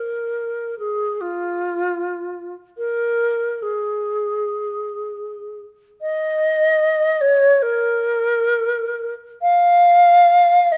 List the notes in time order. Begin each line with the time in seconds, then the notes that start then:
Already playing: A#4
0.79 G#4
1.21 F4
2.78 A#4
3.62 G#4
6.02 D#5
7.21 C#5
7.62 A#4
9.42 F5
10.72 D#5